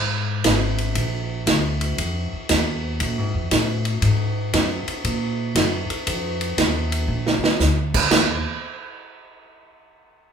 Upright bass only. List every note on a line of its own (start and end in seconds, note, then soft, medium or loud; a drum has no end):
0.00 0.43 G#2 medium
0.44 0.94 G#1 medium
0.95 1.45 A#1 medium
1.46 1.96 D2 medium
1.98 2.29 F2 medium
2.32 muted upright bass stroke soft
2.50 2.99 D#2 medium
3.01 3.18 A#2 medium
3.18 3.34 G#2 medium
3.34 3.50 F2 medium
3.51 4.01 A2 loud
4.02 4.52 G#2 medium
4.54 4.85 F#2 loud
4.87 muted upright bass stroke soft
5.04 5.54 A#2 medium
5.55 5.87 F#2 loud
5.90 muted upright bass stroke soft
6.07 6.56 F2 medium
6.57 7.07 D#2 medium
7.08 7.40 A#1 medium
7.42 muted upright bass stroke soft
7.59 8.09 D2 medium
8.11 8.43 D#2 medium